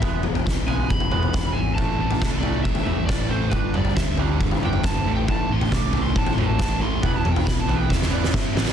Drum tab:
SD |----o-------o---|----o-------o---|----o-------o---|----o-------o---|
T2 |--o-------oo-o--|----------o-----|--o-------oo-o--|----------o-----|
FT |o--o--o--o--o---|o--o--o--o--o---|o--o--o--o--o---|o--o--o--o--o---|
BD |o---o---o---o---|o---o---o---o---|o---o---o---o---|o---o---o---o---|

SD |----o---oo-oo-oo|
T2 |--o-------------|
FT |o--o--o---------|
BD |o---o---o---o---|